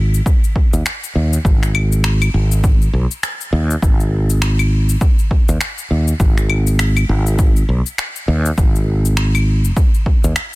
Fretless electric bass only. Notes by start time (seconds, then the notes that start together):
Already playing: G#1
0.73 D#2
1.15 D#2
1.45 G#1
2.34 G#1
2.93 B1
3.53 D#2
3.82 G#1
5.49 D#2
5.91 D#2
6.20 G#1
7.09 G#1
7.69 B1
8.28 D#2
8.58 G#1
10.24 D#2